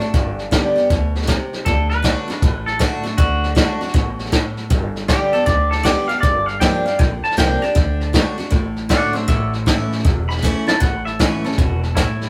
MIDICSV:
0, 0, Header, 1, 6, 480
1, 0, Start_track
1, 0, Tempo, 381437
1, 175, Time_signature, 4, 2, 24, 8
1, 15468, End_track
2, 0, Start_track
2, 0, Title_t, "Clean electric guitar"
2, 0, Program_c, 0, 27
2, 11, Note_on_c, 0, 64, 85
2, 176, Note_off_c, 0, 64, 0
2, 176, Note_on_c, 0, 62, 91
2, 1569, Note_off_c, 0, 62, 0
2, 2079, Note_on_c, 0, 69, 101
2, 2382, Note_off_c, 0, 69, 0
2, 2387, Note_on_c, 0, 71, 103
2, 3322, Note_off_c, 0, 71, 0
2, 3352, Note_on_c, 0, 69, 84
2, 3513, Note_off_c, 0, 69, 0
2, 3513, Note_on_c, 0, 66, 96
2, 3828, Note_off_c, 0, 66, 0
2, 3828, Note_on_c, 0, 64, 91
2, 3992, Note_off_c, 0, 64, 0
2, 3997, Note_on_c, 0, 66, 109
2, 5396, Note_off_c, 0, 66, 0
2, 6398, Note_on_c, 0, 67, 110
2, 6700, Note_off_c, 0, 67, 0
2, 6707, Note_on_c, 0, 69, 105
2, 6865, Note_off_c, 0, 69, 0
2, 6870, Note_on_c, 0, 74, 90
2, 7176, Note_off_c, 0, 74, 0
2, 7184, Note_on_c, 0, 69, 90
2, 7347, Note_on_c, 0, 74, 90
2, 7352, Note_off_c, 0, 69, 0
2, 7644, Note_off_c, 0, 74, 0
2, 7649, Note_on_c, 0, 77, 90
2, 7803, Note_off_c, 0, 77, 0
2, 7808, Note_on_c, 0, 74, 102
2, 8130, Note_off_c, 0, 74, 0
2, 8130, Note_on_c, 0, 77, 98
2, 8304, Note_off_c, 0, 77, 0
2, 8309, Note_on_c, 0, 79, 92
2, 8627, Note_off_c, 0, 79, 0
2, 8627, Note_on_c, 0, 77, 97
2, 8797, Note_off_c, 0, 77, 0
2, 8797, Note_on_c, 0, 79, 109
2, 9099, Note_off_c, 0, 79, 0
2, 9108, Note_on_c, 0, 81, 95
2, 9274, Note_off_c, 0, 81, 0
2, 9286, Note_on_c, 0, 79, 83
2, 9591, Note_off_c, 0, 79, 0
2, 9591, Note_on_c, 0, 81, 102
2, 10989, Note_off_c, 0, 81, 0
2, 11198, Note_on_c, 0, 74, 87
2, 11206, Note_on_c, 0, 78, 91
2, 11498, Note_off_c, 0, 74, 0
2, 11498, Note_on_c, 0, 72, 94
2, 11510, Note_off_c, 0, 78, 0
2, 11510, Note_on_c, 0, 76, 94
2, 11668, Note_off_c, 0, 76, 0
2, 11676, Note_off_c, 0, 72, 0
2, 11683, Note_on_c, 0, 76, 117
2, 11985, Note_off_c, 0, 76, 0
2, 12946, Note_on_c, 0, 83, 107
2, 13417, Note_off_c, 0, 83, 0
2, 13437, Note_on_c, 0, 81, 94
2, 13598, Note_off_c, 0, 81, 0
2, 13598, Note_on_c, 0, 78, 96
2, 13904, Note_off_c, 0, 78, 0
2, 13910, Note_on_c, 0, 76, 92
2, 14080, Note_off_c, 0, 76, 0
2, 14097, Note_on_c, 0, 71, 95
2, 14405, Note_off_c, 0, 71, 0
2, 14405, Note_on_c, 0, 69, 95
2, 14567, Note_off_c, 0, 69, 0
2, 14567, Note_on_c, 0, 66, 103
2, 14863, Note_off_c, 0, 66, 0
2, 14863, Note_on_c, 0, 64, 98
2, 15028, Note_off_c, 0, 64, 0
2, 15043, Note_on_c, 0, 64, 103
2, 15468, Note_off_c, 0, 64, 0
2, 15468, End_track
3, 0, Start_track
3, 0, Title_t, "Steel-string acoustic guitar"
3, 0, Program_c, 1, 25
3, 0, Note_on_c, 1, 45, 81
3, 0, Note_on_c, 1, 66, 56
3, 24, Note_on_c, 1, 62, 51
3, 138, Note_off_c, 1, 45, 0
3, 163, Note_off_c, 1, 66, 0
3, 174, Note_on_c, 1, 43, 100
3, 178, Note_off_c, 1, 62, 0
3, 644, Note_on_c, 1, 50, 74
3, 655, Note_on_c, 1, 55, 85
3, 660, Note_on_c, 1, 59, 82
3, 671, Note_on_c, 1, 67, 78
3, 936, Note_off_c, 1, 67, 0
3, 946, Note_off_c, 1, 50, 0
3, 951, Note_off_c, 1, 55, 0
3, 951, Note_on_c, 1, 67, 55
3, 954, Note_off_c, 1, 59, 0
3, 981, Note_on_c, 1, 59, 52
3, 1098, Note_off_c, 1, 43, 0
3, 1120, Note_off_c, 1, 67, 0
3, 1134, Note_off_c, 1, 59, 0
3, 1137, Note_on_c, 1, 47, 90
3, 1596, Note_off_c, 1, 47, 0
3, 1604, Note_on_c, 1, 48, 93
3, 2069, Note_off_c, 1, 48, 0
3, 2087, Note_on_c, 1, 50, 98
3, 2534, Note_off_c, 1, 50, 0
3, 2549, Note_on_c, 1, 50, 69
3, 2564, Note_on_c, 1, 57, 85
3, 2572, Note_on_c, 1, 62, 75
3, 2575, Note_on_c, 1, 66, 84
3, 2851, Note_off_c, 1, 66, 0
3, 2856, Note_off_c, 1, 50, 0
3, 2864, Note_off_c, 1, 57, 0
3, 2866, Note_on_c, 1, 66, 57
3, 2868, Note_off_c, 1, 62, 0
3, 2891, Note_on_c, 1, 62, 53
3, 3035, Note_off_c, 1, 66, 0
3, 3048, Note_off_c, 1, 62, 0
3, 3054, Note_on_c, 1, 45, 91
3, 3514, Note_on_c, 1, 50, 98
3, 3519, Note_on_c, 1, 57, 96
3, 3526, Note_on_c, 1, 62, 85
3, 3535, Note_on_c, 1, 66, 114
3, 3804, Note_off_c, 1, 66, 0
3, 3818, Note_off_c, 1, 50, 0
3, 3819, Note_on_c, 1, 66, 63
3, 3820, Note_off_c, 1, 57, 0
3, 3824, Note_off_c, 1, 62, 0
3, 3845, Note_on_c, 1, 62, 51
3, 3975, Note_off_c, 1, 45, 0
3, 3991, Note_off_c, 1, 66, 0
3, 4002, Note_on_c, 1, 50, 105
3, 4003, Note_off_c, 1, 62, 0
3, 4451, Note_off_c, 1, 50, 0
3, 4466, Note_on_c, 1, 50, 70
3, 4477, Note_on_c, 1, 57, 74
3, 4484, Note_on_c, 1, 62, 80
3, 4493, Note_on_c, 1, 66, 78
3, 4773, Note_off_c, 1, 50, 0
3, 4778, Note_off_c, 1, 57, 0
3, 4778, Note_off_c, 1, 66, 0
3, 4782, Note_off_c, 1, 62, 0
3, 4793, Note_on_c, 1, 66, 60
3, 4820, Note_on_c, 1, 62, 49
3, 4956, Note_on_c, 1, 47, 92
3, 4957, Note_off_c, 1, 66, 0
3, 4971, Note_off_c, 1, 62, 0
3, 5422, Note_off_c, 1, 47, 0
3, 5438, Note_on_c, 1, 45, 90
3, 5903, Note_off_c, 1, 45, 0
3, 5917, Note_on_c, 1, 43, 104
3, 6397, Note_on_c, 1, 50, 82
3, 6410, Note_on_c, 1, 55, 83
3, 6413, Note_on_c, 1, 59, 91
3, 6422, Note_on_c, 1, 67, 88
3, 6692, Note_off_c, 1, 67, 0
3, 6697, Note_off_c, 1, 50, 0
3, 6703, Note_off_c, 1, 55, 0
3, 6705, Note_off_c, 1, 59, 0
3, 6708, Note_on_c, 1, 67, 67
3, 6736, Note_on_c, 1, 59, 53
3, 6845, Note_off_c, 1, 43, 0
3, 6873, Note_off_c, 1, 67, 0
3, 6887, Note_off_c, 1, 59, 0
3, 7341, Note_on_c, 1, 50, 88
3, 7356, Note_on_c, 1, 55, 85
3, 7363, Note_on_c, 1, 59, 99
3, 7375, Note_on_c, 1, 67, 107
3, 7649, Note_off_c, 1, 50, 0
3, 7651, Note_off_c, 1, 67, 0
3, 7656, Note_off_c, 1, 55, 0
3, 7660, Note_off_c, 1, 59, 0
3, 7666, Note_on_c, 1, 67, 67
3, 7690, Note_on_c, 1, 59, 51
3, 7832, Note_off_c, 1, 67, 0
3, 7840, Note_on_c, 1, 43, 102
3, 7843, Note_off_c, 1, 59, 0
3, 8318, Note_on_c, 1, 53, 77
3, 8330, Note_on_c, 1, 58, 69
3, 8340, Note_on_c, 1, 62, 81
3, 8343, Note_on_c, 1, 67, 84
3, 8613, Note_off_c, 1, 67, 0
3, 8617, Note_off_c, 1, 53, 0
3, 8623, Note_off_c, 1, 58, 0
3, 8628, Note_off_c, 1, 62, 0
3, 8628, Note_on_c, 1, 67, 62
3, 8654, Note_on_c, 1, 62, 50
3, 8766, Note_off_c, 1, 43, 0
3, 8792, Note_off_c, 1, 67, 0
3, 8795, Note_on_c, 1, 50, 88
3, 8805, Note_off_c, 1, 62, 0
3, 9273, Note_on_c, 1, 53, 88
3, 9284, Note_on_c, 1, 58, 105
3, 9285, Note_on_c, 1, 62, 95
3, 9296, Note_on_c, 1, 67, 113
3, 9573, Note_off_c, 1, 67, 0
3, 9575, Note_off_c, 1, 53, 0
3, 9580, Note_off_c, 1, 58, 0
3, 9580, Note_off_c, 1, 62, 0
3, 9588, Note_on_c, 1, 67, 61
3, 9611, Note_on_c, 1, 62, 56
3, 9724, Note_off_c, 1, 50, 0
3, 9752, Note_off_c, 1, 67, 0
3, 9752, Note_on_c, 1, 50, 101
3, 9764, Note_off_c, 1, 62, 0
3, 10217, Note_off_c, 1, 50, 0
3, 10232, Note_on_c, 1, 50, 80
3, 10242, Note_on_c, 1, 57, 74
3, 10251, Note_on_c, 1, 62, 76
3, 10255, Note_on_c, 1, 66, 84
3, 10528, Note_off_c, 1, 66, 0
3, 10535, Note_off_c, 1, 50, 0
3, 10540, Note_off_c, 1, 57, 0
3, 10543, Note_on_c, 1, 66, 63
3, 10544, Note_off_c, 1, 62, 0
3, 10571, Note_on_c, 1, 62, 51
3, 10703, Note_on_c, 1, 45, 89
3, 10711, Note_off_c, 1, 66, 0
3, 10725, Note_off_c, 1, 62, 0
3, 11189, Note_on_c, 1, 50, 98
3, 11202, Note_on_c, 1, 57, 93
3, 11210, Note_on_c, 1, 62, 98
3, 11214, Note_on_c, 1, 66, 107
3, 11476, Note_off_c, 1, 66, 0
3, 11491, Note_on_c, 1, 66, 64
3, 11494, Note_off_c, 1, 50, 0
3, 11500, Note_off_c, 1, 57, 0
3, 11504, Note_off_c, 1, 62, 0
3, 11519, Note_on_c, 1, 62, 52
3, 11639, Note_off_c, 1, 45, 0
3, 11665, Note_off_c, 1, 66, 0
3, 11675, Note_on_c, 1, 45, 104
3, 11679, Note_off_c, 1, 62, 0
3, 12158, Note_on_c, 1, 52, 80
3, 12175, Note_on_c, 1, 57, 79
3, 12179, Note_on_c, 1, 61, 77
3, 12187, Note_on_c, 1, 64, 84
3, 12607, Note_off_c, 1, 45, 0
3, 12625, Note_off_c, 1, 52, 0
3, 12634, Note_off_c, 1, 57, 0
3, 12635, Note_off_c, 1, 61, 0
3, 12639, Note_off_c, 1, 64, 0
3, 12642, Note_on_c, 1, 40, 97
3, 13118, Note_on_c, 1, 52, 83
3, 13122, Note_on_c, 1, 57, 87
3, 13138, Note_on_c, 1, 61, 99
3, 13144, Note_on_c, 1, 64, 108
3, 13408, Note_off_c, 1, 64, 0
3, 13420, Note_off_c, 1, 52, 0
3, 13422, Note_off_c, 1, 57, 0
3, 13423, Note_on_c, 1, 64, 57
3, 13431, Note_off_c, 1, 61, 0
3, 13455, Note_on_c, 1, 61, 47
3, 13572, Note_off_c, 1, 40, 0
3, 13594, Note_off_c, 1, 64, 0
3, 13594, Note_on_c, 1, 45, 109
3, 13610, Note_off_c, 1, 61, 0
3, 14086, Note_on_c, 1, 52, 71
3, 14092, Note_on_c, 1, 57, 78
3, 14106, Note_on_c, 1, 61, 86
3, 14109, Note_on_c, 1, 64, 84
3, 14386, Note_off_c, 1, 52, 0
3, 14386, Note_off_c, 1, 64, 0
3, 14389, Note_off_c, 1, 57, 0
3, 14396, Note_off_c, 1, 61, 0
3, 14401, Note_on_c, 1, 64, 60
3, 14425, Note_on_c, 1, 61, 56
3, 14529, Note_off_c, 1, 45, 0
3, 14564, Note_off_c, 1, 64, 0
3, 14576, Note_off_c, 1, 61, 0
3, 14578, Note_on_c, 1, 47, 91
3, 15038, Note_off_c, 1, 47, 0
3, 15059, Note_on_c, 1, 45, 90
3, 15468, Note_off_c, 1, 45, 0
3, 15468, End_track
4, 0, Start_track
4, 0, Title_t, "Upright bass"
4, 0, Program_c, 2, 32
4, 177, Note_on_c, 2, 31, 84
4, 728, Note_off_c, 2, 31, 0
4, 1135, Note_on_c, 2, 38, 93
4, 1686, Note_off_c, 2, 38, 0
4, 2091, Note_on_c, 2, 38, 91
4, 2643, Note_off_c, 2, 38, 0
4, 3050, Note_on_c, 2, 33, 92
4, 3601, Note_off_c, 2, 33, 0
4, 4010, Note_on_c, 2, 38, 94
4, 4561, Note_off_c, 2, 38, 0
4, 4967, Note_on_c, 2, 33, 91
4, 5518, Note_off_c, 2, 33, 0
4, 5922, Note_on_c, 2, 31, 100
4, 6475, Note_off_c, 2, 31, 0
4, 6882, Note_on_c, 2, 38, 80
4, 7435, Note_off_c, 2, 38, 0
4, 7841, Note_on_c, 2, 31, 89
4, 8394, Note_off_c, 2, 31, 0
4, 8805, Note_on_c, 2, 34, 97
4, 9066, Note_off_c, 2, 34, 0
4, 9285, Note_on_c, 2, 36, 90
4, 9547, Note_off_c, 2, 36, 0
4, 9768, Note_on_c, 2, 38, 91
4, 10319, Note_off_c, 2, 38, 0
4, 10723, Note_on_c, 2, 33, 90
4, 11276, Note_off_c, 2, 33, 0
4, 11687, Note_on_c, 2, 33, 89
4, 12240, Note_off_c, 2, 33, 0
4, 12651, Note_on_c, 2, 28, 78
4, 13204, Note_off_c, 2, 28, 0
4, 13614, Note_on_c, 2, 33, 87
4, 14166, Note_off_c, 2, 33, 0
4, 14575, Note_on_c, 2, 28, 91
4, 15128, Note_off_c, 2, 28, 0
4, 15468, End_track
5, 0, Start_track
5, 0, Title_t, "Muted upright bass strokes"
5, 11, Note_on_c, 9, 29, 72
5, 137, Note_off_c, 9, 29, 0
5, 965, Note_on_c, 9, 29, 65
5, 1091, Note_off_c, 9, 29, 0
5, 1922, Note_on_c, 9, 29, 66
5, 2048, Note_off_c, 9, 29, 0
5, 2876, Note_on_c, 9, 29, 69
5, 3002, Note_off_c, 9, 29, 0
5, 3835, Note_on_c, 9, 29, 74
5, 3961, Note_off_c, 9, 29, 0
5, 4789, Note_on_c, 9, 29, 66
5, 4915, Note_off_c, 9, 29, 0
5, 5752, Note_on_c, 9, 29, 72
5, 5878, Note_off_c, 9, 29, 0
5, 6712, Note_on_c, 9, 29, 60
5, 6837, Note_off_c, 9, 29, 0
5, 7672, Note_on_c, 9, 29, 73
5, 7798, Note_off_c, 9, 29, 0
5, 8633, Note_on_c, 9, 29, 65
5, 8758, Note_off_c, 9, 29, 0
5, 9113, Note_on_c, 9, 29, 75
5, 9239, Note_off_c, 9, 29, 0
5, 10549, Note_on_c, 9, 29, 67
5, 10675, Note_off_c, 9, 29, 0
5, 11511, Note_on_c, 9, 29, 78
5, 11637, Note_off_c, 9, 29, 0
5, 13443, Note_on_c, 9, 29, 73
5, 13569, Note_off_c, 9, 29, 0
5, 14403, Note_on_c, 9, 29, 70
5, 14528, Note_off_c, 9, 29, 0
5, 15368, Note_on_c, 9, 29, 73
5, 15468, Note_off_c, 9, 29, 0
5, 15468, End_track
6, 0, Start_track
6, 0, Title_t, "Drums"
6, 1, Note_on_c, 9, 38, 41
6, 127, Note_off_c, 9, 38, 0
6, 176, Note_on_c, 9, 36, 110
6, 177, Note_on_c, 9, 38, 35
6, 302, Note_off_c, 9, 36, 0
6, 303, Note_off_c, 9, 38, 0
6, 486, Note_on_c, 9, 38, 36
6, 612, Note_off_c, 9, 38, 0
6, 656, Note_on_c, 9, 36, 88
6, 657, Note_on_c, 9, 38, 120
6, 657, Note_on_c, 9, 44, 95
6, 782, Note_off_c, 9, 36, 0
6, 783, Note_off_c, 9, 38, 0
6, 783, Note_off_c, 9, 44, 0
6, 969, Note_on_c, 9, 38, 33
6, 1095, Note_off_c, 9, 38, 0
6, 1136, Note_on_c, 9, 36, 118
6, 1138, Note_on_c, 9, 38, 35
6, 1262, Note_off_c, 9, 36, 0
6, 1263, Note_off_c, 9, 38, 0
6, 1449, Note_on_c, 9, 38, 35
6, 1533, Note_off_c, 9, 38, 0
6, 1533, Note_on_c, 9, 38, 36
6, 1613, Note_off_c, 9, 38, 0
6, 1613, Note_on_c, 9, 38, 94
6, 1613, Note_on_c, 9, 44, 88
6, 1614, Note_on_c, 9, 36, 91
6, 1739, Note_off_c, 9, 36, 0
6, 1739, Note_off_c, 9, 38, 0
6, 1739, Note_off_c, 9, 44, 0
6, 1925, Note_on_c, 9, 38, 35
6, 2051, Note_off_c, 9, 38, 0
6, 2092, Note_on_c, 9, 38, 36
6, 2093, Note_on_c, 9, 36, 110
6, 2218, Note_off_c, 9, 38, 0
6, 2219, Note_off_c, 9, 36, 0
6, 2402, Note_on_c, 9, 38, 38
6, 2527, Note_off_c, 9, 38, 0
6, 2570, Note_on_c, 9, 36, 93
6, 2571, Note_on_c, 9, 38, 124
6, 2571, Note_on_c, 9, 44, 91
6, 2696, Note_off_c, 9, 36, 0
6, 2697, Note_off_c, 9, 38, 0
6, 2697, Note_off_c, 9, 44, 0
6, 2886, Note_on_c, 9, 38, 38
6, 3011, Note_off_c, 9, 38, 0
6, 3050, Note_on_c, 9, 36, 122
6, 3051, Note_on_c, 9, 38, 36
6, 3176, Note_off_c, 9, 36, 0
6, 3177, Note_off_c, 9, 38, 0
6, 3362, Note_on_c, 9, 38, 33
6, 3487, Note_off_c, 9, 38, 0
6, 3528, Note_on_c, 9, 36, 84
6, 3528, Note_on_c, 9, 38, 111
6, 3528, Note_on_c, 9, 44, 88
6, 3653, Note_off_c, 9, 38, 0
6, 3653, Note_off_c, 9, 44, 0
6, 3654, Note_off_c, 9, 36, 0
6, 3839, Note_on_c, 9, 38, 35
6, 3965, Note_off_c, 9, 38, 0
6, 4006, Note_on_c, 9, 38, 38
6, 4007, Note_on_c, 9, 36, 112
6, 4132, Note_off_c, 9, 38, 0
6, 4133, Note_off_c, 9, 36, 0
6, 4322, Note_on_c, 9, 38, 36
6, 4447, Note_off_c, 9, 38, 0
6, 4486, Note_on_c, 9, 36, 100
6, 4487, Note_on_c, 9, 38, 119
6, 4487, Note_on_c, 9, 44, 91
6, 4612, Note_off_c, 9, 36, 0
6, 4613, Note_off_c, 9, 38, 0
6, 4613, Note_off_c, 9, 44, 0
6, 4796, Note_on_c, 9, 38, 36
6, 4883, Note_off_c, 9, 38, 0
6, 4883, Note_on_c, 9, 38, 34
6, 4963, Note_off_c, 9, 38, 0
6, 4963, Note_on_c, 9, 38, 34
6, 4965, Note_on_c, 9, 36, 118
6, 5088, Note_off_c, 9, 38, 0
6, 5091, Note_off_c, 9, 36, 0
6, 5274, Note_on_c, 9, 38, 39
6, 5357, Note_off_c, 9, 38, 0
6, 5357, Note_on_c, 9, 38, 35
6, 5444, Note_on_c, 9, 36, 88
6, 5445, Note_off_c, 9, 38, 0
6, 5445, Note_on_c, 9, 38, 108
6, 5445, Note_on_c, 9, 44, 86
6, 5570, Note_off_c, 9, 36, 0
6, 5570, Note_off_c, 9, 38, 0
6, 5570, Note_off_c, 9, 44, 0
6, 5750, Note_on_c, 9, 38, 37
6, 5876, Note_off_c, 9, 38, 0
6, 5923, Note_on_c, 9, 36, 113
6, 5923, Note_on_c, 9, 38, 37
6, 6049, Note_off_c, 9, 36, 0
6, 6049, Note_off_c, 9, 38, 0
6, 6239, Note_on_c, 9, 38, 37
6, 6365, Note_off_c, 9, 38, 0
6, 6402, Note_on_c, 9, 38, 122
6, 6402, Note_on_c, 9, 44, 95
6, 6404, Note_on_c, 9, 36, 96
6, 6528, Note_off_c, 9, 38, 0
6, 6528, Note_off_c, 9, 44, 0
6, 6530, Note_off_c, 9, 36, 0
6, 6716, Note_on_c, 9, 38, 33
6, 6842, Note_off_c, 9, 38, 0
6, 6884, Note_on_c, 9, 36, 116
6, 6886, Note_on_c, 9, 38, 35
6, 7010, Note_off_c, 9, 36, 0
6, 7012, Note_off_c, 9, 38, 0
6, 7197, Note_on_c, 9, 38, 37
6, 7277, Note_off_c, 9, 38, 0
6, 7277, Note_on_c, 9, 38, 38
6, 7361, Note_off_c, 9, 38, 0
6, 7361, Note_on_c, 9, 38, 118
6, 7361, Note_on_c, 9, 44, 83
6, 7362, Note_on_c, 9, 36, 85
6, 7487, Note_off_c, 9, 38, 0
6, 7487, Note_off_c, 9, 44, 0
6, 7488, Note_off_c, 9, 36, 0
6, 7668, Note_on_c, 9, 38, 41
6, 7794, Note_off_c, 9, 38, 0
6, 7838, Note_on_c, 9, 38, 31
6, 7842, Note_on_c, 9, 36, 120
6, 7964, Note_off_c, 9, 38, 0
6, 7968, Note_off_c, 9, 36, 0
6, 8154, Note_on_c, 9, 38, 38
6, 8280, Note_off_c, 9, 38, 0
6, 8321, Note_on_c, 9, 38, 112
6, 8321, Note_on_c, 9, 44, 88
6, 8323, Note_on_c, 9, 36, 92
6, 8447, Note_off_c, 9, 38, 0
6, 8447, Note_off_c, 9, 44, 0
6, 8449, Note_off_c, 9, 36, 0
6, 8637, Note_on_c, 9, 38, 37
6, 8763, Note_off_c, 9, 38, 0
6, 8804, Note_on_c, 9, 36, 127
6, 8806, Note_on_c, 9, 38, 36
6, 8930, Note_off_c, 9, 36, 0
6, 8931, Note_off_c, 9, 38, 0
6, 9112, Note_on_c, 9, 38, 36
6, 9201, Note_off_c, 9, 38, 0
6, 9201, Note_on_c, 9, 38, 35
6, 9285, Note_on_c, 9, 36, 84
6, 9288, Note_off_c, 9, 38, 0
6, 9288, Note_on_c, 9, 38, 120
6, 9288, Note_on_c, 9, 44, 84
6, 9411, Note_off_c, 9, 36, 0
6, 9414, Note_off_c, 9, 38, 0
6, 9414, Note_off_c, 9, 44, 0
6, 9599, Note_on_c, 9, 38, 36
6, 9725, Note_off_c, 9, 38, 0
6, 9764, Note_on_c, 9, 36, 114
6, 9766, Note_on_c, 9, 38, 33
6, 9890, Note_off_c, 9, 36, 0
6, 9892, Note_off_c, 9, 38, 0
6, 10077, Note_on_c, 9, 38, 36
6, 10203, Note_off_c, 9, 38, 0
6, 10243, Note_on_c, 9, 36, 101
6, 10246, Note_on_c, 9, 38, 116
6, 10246, Note_on_c, 9, 44, 93
6, 10369, Note_off_c, 9, 36, 0
6, 10372, Note_off_c, 9, 38, 0
6, 10372, Note_off_c, 9, 44, 0
6, 10556, Note_on_c, 9, 38, 31
6, 10682, Note_off_c, 9, 38, 0
6, 10717, Note_on_c, 9, 38, 34
6, 10721, Note_on_c, 9, 36, 105
6, 10843, Note_off_c, 9, 38, 0
6, 10847, Note_off_c, 9, 36, 0
6, 11027, Note_on_c, 9, 38, 39
6, 11153, Note_off_c, 9, 38, 0
6, 11200, Note_on_c, 9, 38, 106
6, 11200, Note_on_c, 9, 44, 81
6, 11201, Note_on_c, 9, 36, 89
6, 11326, Note_off_c, 9, 38, 0
6, 11326, Note_off_c, 9, 44, 0
6, 11327, Note_off_c, 9, 36, 0
6, 11512, Note_on_c, 9, 38, 37
6, 11638, Note_off_c, 9, 38, 0
6, 11682, Note_on_c, 9, 38, 36
6, 11683, Note_on_c, 9, 36, 104
6, 11808, Note_off_c, 9, 38, 0
6, 11809, Note_off_c, 9, 36, 0
6, 11994, Note_on_c, 9, 38, 38
6, 12120, Note_off_c, 9, 38, 0
6, 12167, Note_on_c, 9, 36, 91
6, 12168, Note_on_c, 9, 38, 122
6, 12168, Note_on_c, 9, 44, 92
6, 12293, Note_off_c, 9, 36, 0
6, 12293, Note_off_c, 9, 38, 0
6, 12293, Note_off_c, 9, 44, 0
6, 12483, Note_on_c, 9, 38, 35
6, 12572, Note_off_c, 9, 38, 0
6, 12572, Note_on_c, 9, 38, 35
6, 12649, Note_off_c, 9, 38, 0
6, 12649, Note_on_c, 9, 36, 121
6, 12649, Note_on_c, 9, 38, 36
6, 12774, Note_off_c, 9, 38, 0
6, 12775, Note_off_c, 9, 36, 0
6, 12961, Note_on_c, 9, 38, 35
6, 13051, Note_off_c, 9, 38, 0
6, 13051, Note_on_c, 9, 38, 34
6, 13128, Note_off_c, 9, 38, 0
6, 13128, Note_on_c, 9, 38, 58
6, 13128, Note_on_c, 9, 44, 85
6, 13129, Note_on_c, 9, 36, 84
6, 13254, Note_off_c, 9, 38, 0
6, 13254, Note_off_c, 9, 44, 0
6, 13255, Note_off_c, 9, 36, 0
6, 13441, Note_on_c, 9, 38, 108
6, 13567, Note_off_c, 9, 38, 0
6, 13610, Note_on_c, 9, 38, 32
6, 13611, Note_on_c, 9, 36, 112
6, 13736, Note_off_c, 9, 38, 0
6, 13737, Note_off_c, 9, 36, 0
6, 13926, Note_on_c, 9, 38, 37
6, 14052, Note_off_c, 9, 38, 0
6, 14093, Note_on_c, 9, 38, 125
6, 14093, Note_on_c, 9, 44, 89
6, 14094, Note_on_c, 9, 36, 87
6, 14219, Note_off_c, 9, 38, 0
6, 14219, Note_off_c, 9, 44, 0
6, 14220, Note_off_c, 9, 36, 0
6, 14408, Note_on_c, 9, 38, 35
6, 14492, Note_off_c, 9, 38, 0
6, 14492, Note_on_c, 9, 38, 34
6, 14569, Note_off_c, 9, 38, 0
6, 14569, Note_on_c, 9, 38, 37
6, 14574, Note_on_c, 9, 36, 114
6, 14695, Note_off_c, 9, 38, 0
6, 14700, Note_off_c, 9, 36, 0
6, 14890, Note_on_c, 9, 38, 36
6, 15016, Note_off_c, 9, 38, 0
6, 15057, Note_on_c, 9, 36, 78
6, 15059, Note_on_c, 9, 38, 108
6, 15059, Note_on_c, 9, 44, 76
6, 15183, Note_off_c, 9, 36, 0
6, 15185, Note_off_c, 9, 38, 0
6, 15185, Note_off_c, 9, 44, 0
6, 15367, Note_on_c, 9, 38, 38
6, 15468, Note_off_c, 9, 38, 0
6, 15468, End_track
0, 0, End_of_file